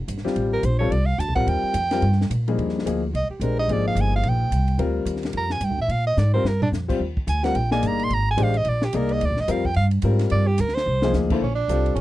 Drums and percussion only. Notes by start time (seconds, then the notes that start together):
0.08 hi-hat pedal, ride
0.18 snare
0.27 snare
0.36 ride
0.63 hi-hat pedal, ride
0.92 ride
1.20 hi-hat pedal, ride
1.35 kick, ride
1.47 ride
1.74 hi-hat pedal, ride
1.91 snare, ride
2.02 ride
2.12 snare
2.21 snare
2.31 hi-hat pedal, ride
2.48 ride
2.59 ride
2.69 snare
2.79 snare
2.87 hi-hat pedal, ride
3.15 ride
3.41 hi-hat pedal, ride
3.69 ride
3.96 hi-hat pedal, ride
4.23 ride
4.52 hi-hat pedal, ride
4.68 ride
4.79 ride
5.06 hi-hat pedal, ride
5.16 snare
5.23 snare, ride
5.33 ride
5.50 snare
5.61 hi-hat pedal, ride
5.89 ride
6.17 snare, hi-hat pedal
6.45 snare
6.62 floor tom
6.73 snare, hi-hat pedal
6.89 kick, crash
7.17 kick
7.28 hi-hat pedal, ride
7.44 snare, ride
7.55 ride
7.71 snare
7.83 hi-hat pedal, ride
7.99 ride
8.10 ride
8.38 hi-hat pedal, ride
8.54 ride
8.64 ride
8.82 snare
8.93 hi-hat pedal, ride
9.09 ride
9.21 ride
9.37 snare
9.48 hi-hat pedal, ride
9.65 kick
9.74 ride
9.91 ride
10.02 hi-hat pedal, ride
10.19 snare, ride
10.30 ride
10.58 hi-hat pedal, ride
10.68 snare
10.77 snare
11.02 snare
11.13 snare, hi-hat pedal
11.30 kick, crash
11.69 hi-hat pedal, ride
11.86 ride
11.96 ride